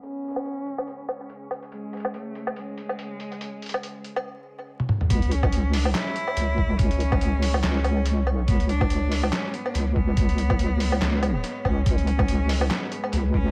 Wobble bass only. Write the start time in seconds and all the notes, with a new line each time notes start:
5.10 C#2
6.37 C#2
6.79 C#2
7.64 C#2
8.23 C2
8.48 C#2
9.75 C#2
10.17 C#2
11.02 C#2
11.65 C#2
11.86 C#2
13.13 C#2